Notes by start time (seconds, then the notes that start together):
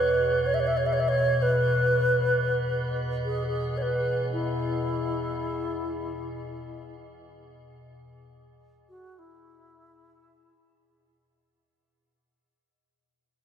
Already playing: E2 B2 B4
0.46 C#5
0.54 E5
0.60 C#5
0.67 E5
0.77 C#5
0.86 E5
0.93 C#5
1.00 E5
1.08 C#5
1.42 B4
3.25 G#4
3.47 G#4
3.68 G#4
3.77 C#5
3.82 B4
4.32 E4
8.89 F#4
9.19 E4